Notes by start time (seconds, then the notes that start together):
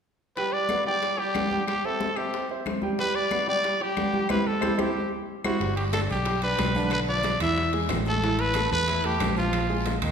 0.36 G3 G4 B4 G5, high bongo, high conga
0.52 D5, high conga
0.69 B3 B4 D5, high bongo, high conga, claves
0.87 G3 G4 D5 G5
1.02 high bongo, high conga
1.18 G3 G4 G5, high conga
1.35 B3 B4 D5, high bongo, low bongo, high conga, claves
1.51 G3 G4 G5, high conga
1.68 G4, high bongo, high conga, claves
1.84 C4 A4 C5 E5, high bongo, high conga
2.00 high bongo, high conga
2.16 C4 G4 C5 E5, high bongo, claves
2.33 high bongo, high conga
2.49 C4 C5 E5, high conga
2.66 high bongo, low bongo, high conga, claves
2.82 G3 G4 G5, high bongo, high conga
2.99 G3 G4 B4 G5, high bongo, high conga
3.15 D5, high conga
3.31 B3 B4 D5, high bongo, high conga, claves
3.47 G3 G4 D5 G5
3.64 high bongo, high conga
3.81 G3 G4 G5, high conga
3.97 B3 B4 D5, high bongo, low bongo, high conga, claves
4.14 G3 G4 G5, high conga
4.29 E4 G4 B4 C5, high bongo, high conga, claves
4.47 A4
4.61 E4 G4 C5, high bongo, high conga, claves
4.78 E4 G4 C5, high bongo, high conga, claves
5.44 E4 F#4 G4 C5, high bongo, high conga, claves
5.60 G1 G3 G4, high bongo, high conga, long guiro
5.76 G4, high conga, high timbale
5.93 D4 A4 D5, high bongo, high conga, high timbale, low timbale, short guiro, claves
6.09 B1 G4, short guiro
6.25 G3 G4, high bongo, high conga, high timbale, long guiro
6.42 D4 B4 D5, high conga, high timbale
6.59 B1, high bongo, low bongo, high conga, high timbale, low timbale, short guiro, claves
6.75 D3 D4, high conga, short guiro
6.91 B4, high bongo, high timbale, long guiro, claves
7.07 F3 F4 D5, high bongo, high conga
7.23 high bongo, high conga, high timbale, low timbale, short guiro
7.40 E2 E3 E4 E5, high bongo, high timbale, short guiro, claves
7.56 high bongo, high conga, long guiro
7.73 G#3 G#4, high conga, high timbale
7.89 A1, high bongo, low bongo, high conga, high timbale, low timbale, short guiro, claves
8.05 A3 A4, high bongo, high conga, short guiro
8.22 E3 E4, high bongo, high conga, long guiro
8.39 B4, high timbale
8.54 A3 A4, high bongo, high conga, high timbale, low timbale, short guiro, claves
8.71 E2 B4, short guiro
8.87 E3 E4, high bongo, high conga, high timbale, long guiro
9.04 A3 G4 A4, high conga, high timbale
9.20 A#1, high bongo, low bongo, high conga, high timbale, low timbale, short guiro, claves
9.37 F3 F4, high conga, short guiro
9.53 high bongo, high conga, high timbale, long guiro, claves
9.69 G#3 G#4, high bongo, high conga
9.85 high bongo, high conga, high timbale, low timbale, short guiro
10.02 D#2 D#3 D#4, high bongo, high timbale, short guiro, claves